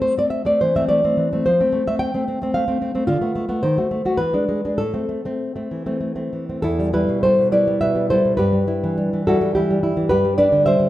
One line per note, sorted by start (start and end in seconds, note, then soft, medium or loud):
0.00 0.17 A3 soft
0.00 0.16 C4 soft
0.00 0.16 C5 medium
0.18 0.44 A3 soft
0.18 0.44 C4 soft
0.18 0.30 D5 medium
0.30 0.45 E5 medium
0.45 0.74 A3 soft
0.45 0.75 C4 soft
0.45 0.60 D5 medium
0.61 1.16 E3 soft
0.61 0.75 C5 medium
0.75 0.88 A3 soft
0.75 1.03 C4 soft
0.75 0.88 E5 medium
0.89 1.03 A3 soft
0.89 1.44 D5 medium
1.04 1.32 A3 soft
1.04 1.31 C4 soft
1.17 1.46 E3 soft
1.33 1.45 A3 soft
1.33 1.45 C4 soft
1.46 1.60 F3 medium
1.46 1.86 C5 medium
1.60 1.71 A3 soft
1.60 1.86 C4 soft
1.73 1.86 A3 soft
1.87 2.13 A3 soft
1.87 2.14 C4 soft
1.87 1.99 E5 medium
1.99 2.52 G5 medium
2.14 2.40 A3 soft
2.14 2.27 C4 soft
2.28 2.42 C4 soft
2.42 2.54 A3 soft
2.42 2.67 C4 soft
2.54 2.67 A3 soft
2.54 3.06 F5 medium
2.68 2.94 A3 soft
2.68 2.80 C4 soft
2.82 2.94 C4 soft
2.95 3.07 A3 soft
2.95 3.07 C4 soft
3.07 3.21 D3 medium
3.07 3.60 F4 medium
3.21 3.34 A3 soft
3.21 3.48 B3 soft
3.35 3.48 A3 soft
3.49 3.61 A3 soft
3.49 3.61 B3 medium
3.63 3.76 D#3 medium
3.63 4.17 C5 medium
3.78 3.90 A3 soft
3.78 4.05 F#4 soft
3.91 4.04 A3 soft
4.05 4.18 A3 soft
4.05 4.19 F#4 medium
4.17 4.34 E3 medium
4.17 4.77 B4 medium
4.34 4.47 G#3 soft
4.34 4.64 D4 soft
4.49 4.64 G#3 soft
4.65 4.79 G#3 soft
4.65 4.79 D4 soft
4.78 4.95 A2 soft
4.78 6.29 A4 medium
4.94 5.08 A3 soft
4.94 5.24 C4 soft
5.09 5.24 A3 soft
5.25 5.54 A3 soft
5.25 5.55 C4 soft
5.56 5.85 A3 soft
5.56 5.86 C4 soft
5.71 6.32 E3 soft
5.86 5.99 A3 soft
5.86 6.15 C4 soft
6.01 6.14 A3 soft
6.16 6.48 A3 soft
6.16 6.48 C4 soft
6.33 6.65 E3 soft
6.49 6.64 A3 soft
6.49 6.63 C4 soft
6.62 7.08 E2 medium
6.62 6.92 E4 medium
6.62 6.93 A4 medium
6.79 6.92 G3 soft
6.93 7.23 G3 soft
6.93 7.51 E4 soft
6.93 7.22 G4 soft
6.93 7.23 B4 medium
7.09 7.38 B2 soft
7.23 7.51 G3 soft
7.23 7.52 A4 medium
7.23 7.52 C5 medium
7.39 7.81 B2 soft
7.52 7.66 G3 soft
7.52 8.10 E4 soft
7.52 7.80 B4 soft
7.52 7.80 D5 medium
7.67 7.94 G3 soft
7.81 8.24 B2 soft
7.81 8.09 B4 medium
7.81 8.09 E5 medium
7.95 8.10 G3 soft
8.10 8.37 G3 soft
8.10 8.37 E4 soft
8.10 8.38 A4 medium
8.10 8.37 C5 medium
8.25 8.38 B2 soft
8.37 10.07 G2 medium
8.37 9.22 G4 medium
8.37 9.22 B4 medium
8.52 8.66 G3 soft
8.67 8.96 G3 soft
8.67 9.27 E4 soft
8.84 9.12 E3 soft
8.98 9.26 G3 soft
9.13 9.55 E3 soft
9.27 9.40 G3 soft
9.27 9.55 E4 soft
9.27 9.54 F#4 medium
9.27 9.54 A4 medium
9.41 9.69 G3 medium
9.55 9.96 E3 soft
9.55 9.82 E4 medium
9.55 10.09 G4 medium
9.71 9.83 G3 soft
9.83 10.09 G3 soft
9.83 10.09 E4 soft
9.97 10.11 E3 soft
10.09 10.89 G2 medium
10.09 10.37 G4 medium
10.09 10.37 B4 medium
10.25 10.37 G3 soft
10.38 10.66 G3 soft
10.38 10.52 D4 soft
10.38 10.65 B4 medium
10.38 10.65 D5 medium
10.52 10.79 D3 soft
10.66 10.89 G3 soft
10.66 10.89 C5 medium
10.66 10.89 E5 medium
10.80 10.89 D3 soft